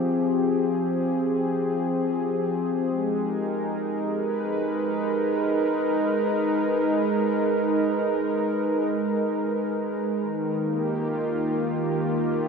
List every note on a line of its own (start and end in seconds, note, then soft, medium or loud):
0.00 2.85 F3 medium
0.00 2.86 C4 medium
0.00 5.07 G4 medium
0.00 4.22 G#4 medium
2.88 10.25 G#3 medium
3.15 12.48 D#4 medium
3.15 12.48 A#4 medium
4.16 10.25 B4 medium
10.22 12.48 D#3 medium
10.58 12.48 A#3 medium
10.70 12.48 G4 medium
10.93 12.48 F4 medium